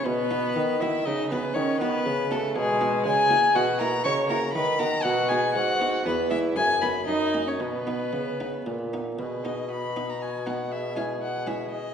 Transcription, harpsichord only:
0.06 B2
0.31 B3 D#4 F#4
0.56 D#3
0.82 B3 D#4 F#4
1.07 C#3
1.32 B3 D#4 F#4
1.56 D#3
1.81 B3 D#4 F#4
2.06 C#3
2.31 B3 D#4 F#4
2.56 B2
2.81 B3 D#4 F#4
3.06 C#3
3.30 A#3 E4 F#4
3.56 B2
3.80 A#3 E4 F#4
4.05 C#3
4.30 A#3 E4 F#4
4.55 D#3
4.79 B3 D#4 F#4
5.05 B2
5.31 B3 D#4 F#4
5.55 G#2
5.81 B3 D#4 F#4
6.06 E2
6.31 G#3 B3 E4
6.56 F#2
6.83 B3 D#4
7.08 F#2
7.34 A#3 C#4
7.60 B2
7.87 B3 D#4
8.13 C#3
8.40 B3 D#4
8.66 A#2
8.93 B3 D#4
9.19 B2
9.45 B3 D#4
9.96 B3 D#4
10.47 B3 D#4
10.96 G#3 C#4 E4
11.47 G#3 C#4 E4

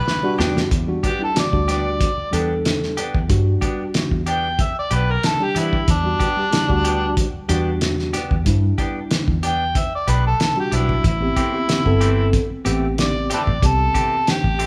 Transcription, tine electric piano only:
0.23 G3 D4 F#4
0.87 G3 D4 F#4
1.19 G3 D4 E4
1.34 G3 D4 F#4
1.52 G3 D4 F#4
2.31 G3 D4 A4
3.28 G3 D4 F#4
5.40 G3 D4 G4
6.04 G3 D4 F#4
6.37 G3 D4 G4
6.51 G3 D4 E4
6.68 G3 D4 F#4
7.48 G3 D4 F#4
8.45 G3 D4 E4
10.56 G3 D4 F#4
11.20 B3 C4 G4
11.52 B3 C4 G4
11.68 B3 C4 G4
11.85 B3 C4 A4
12.65 B3 C4 G4
13.62 B3 C4 G4

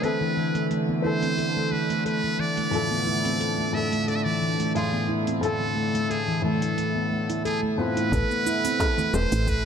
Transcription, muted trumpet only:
0.04 B4
1.05 C5
1.72 B4
2.06 B4
2.40 D5
3.74 E5
4.08 D5
4.16 E5
4.24 D5
4.76 G#4
5.43 A4
6.10 G#4
6.44 A4
7.46 G#4
7.79 B4
9.15 C5
9.49 B4

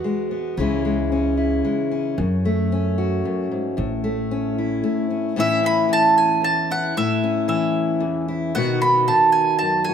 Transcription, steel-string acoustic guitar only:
Already playing: E2 B3 F#4
0.04 G#3
0.31 B3
0.58 C#3 E3 G#3 C#4 E4
0.85 G#3
1.12 C#4
1.37 E4
1.65 G#3
1.91 C#4
2.18 F#2
2.45 A3
2.72 C#4
2.98 F#4
3.25 F#2
3.51 G#2
3.77 A2
4.04 A3
4.31 C#4
4.58 E4
4.84 A3
5.10 C#4
5.36 A2 E3 B3 C#4 E4
5.63 C#4
5.89 E3
6.42 E2
6.70 E4
6.97 A2 E4
7.24 C#4
7.48 E3
8.00 E2
8.28 E4
8.55 B2 D#3 B3 D#4 F#4
8.82 D#4
9.08 D#3
9.61 F#2
9.89 F#4

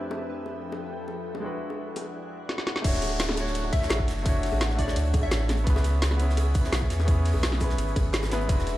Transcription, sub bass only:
2.84 D1
3.90 A1
4.08 F#1
4.52 A1
4.96 D2
5.14 A1
5.67 C#2
6.72 B1
6.90 E2
7.34 B1
7.79 G#1
7.96 G#1
8.49 E1

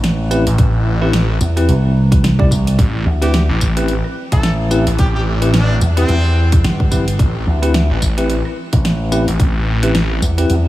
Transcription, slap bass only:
Already playing: A1
1.41 E2
1.69 C2
2.51 C2
3.06 D2
4.32 A1
5.82 E2
6.09 E2
6.64 G1
7.47 D2
8.73 A1
10.22 E2
10.50 E2

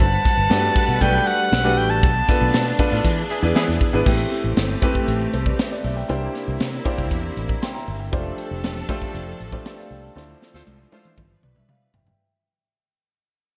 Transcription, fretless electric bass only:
0.00 G1
0.37 G1
0.50 G2
0.88 B2
1.01 B1
1.52 B1
1.78 A1
2.03 B1
2.41 B1
2.54 B2
2.92 A2
3.05 E3
3.43 E2
3.55 E3
3.68 E2
3.93 G#1
4.06 A1
4.44 A1
4.57 G1
5.08 A1
5.34 C2
5.84 B1
6.09 C2
6.48 C2
6.61 C3
6.98 C2
7.11 E2
7.37 A1
7.88 G1
8.13 F1
8.51 F1
8.64 E1
9.15 F1
9.40 A1
9.91 C2
10.16 D2
10.54 D2
10.67 C2
11.18 G1
11.43 B1
11.94 F1

